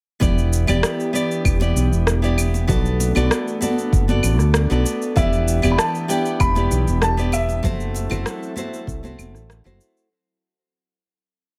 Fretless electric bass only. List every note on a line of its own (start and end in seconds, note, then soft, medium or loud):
0.21 0.64 E1 medium
0.68 0.81 E1 medium
1.45 1.71 E1 medium
1.76 1.89 B1 medium
1.92 2.65 E1 medium
2.69 3.12 B1 medium
3.16 3.29 B1 medium
3.93 4.19 F#1 loud
4.23 4.40 A1 loud
4.40 4.65 D2 medium
4.71 4.83 B1 loud
5.16 5.59 E1 medium
5.63 5.76 E1 medium
6.40 6.66 E1 medium
6.71 6.84 B1 medium
6.88 7.60 E1 medium
7.64 8.07 F#1 medium
8.11 8.23 F#1 medium
8.87 9.14 C2 medium
9.18 9.34 E1 medium
9.34 9.60 A1 medium
9.65 9.78 F#1 loud